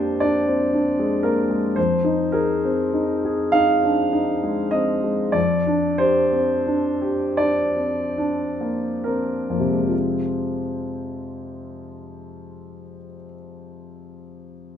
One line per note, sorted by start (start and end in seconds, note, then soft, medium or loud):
0.00 1.72 F2 soft
0.00 1.25 A#3 soft
0.00 0.22 D4 soft
0.00 1.79 G4 soft
0.00 0.22 C5 medium
0.00 0.20 D5 medium
0.20 0.63 D4 soft
0.20 1.23 D5 medium
0.47 0.73 C4 soft
0.73 1.14 D4 soft
0.99 1.40 G#3 soft
1.23 1.66 A#3 soft
1.23 1.76 A#4 medium
1.50 1.76 G#3 soft
1.76 5.31 F2 soft
1.76 2.32 C5 medium
2.04 2.50 D#4 soft
2.32 2.81 G#4 soft
2.32 3.53 A#4 medium
2.64 3.12 C4 soft
2.93 3.42 D#4 soft
3.25 3.72 G#4 soft
3.52 4.01 D#4 soft
3.52 4.72 F5 medium
3.84 4.13 D4 soft
4.13 4.60 D#4 soft
4.43 4.91 G#3 soft
4.71 5.21 C4 soft
4.71 5.33 D#5 medium
5.03 5.34 G#3 soft
5.32 9.48 F2 soft
5.32 5.98 D5 medium
5.67 6.19 D4 soft
5.98 6.53 G4 soft
5.98 7.40 C5 medium
6.32 6.89 C4 soft
6.67 7.25 D4 soft
7.02 7.63 G4 soft
7.37 8.03 D4 soft
7.37 9.07 D5 medium
7.77 8.19 C4 soft
8.18 8.89 D4 soft
8.61 9.34 A#3 soft
9.04 9.75 C4 soft
9.04 9.89 A#4 soft
9.50 12.95 F2 soft
9.50 9.90 A#3 soft
9.60 13.05 C3 soft
9.69 13.15 G#3 soft
9.80 13.25 C4 soft
9.88 13.34 F4 soft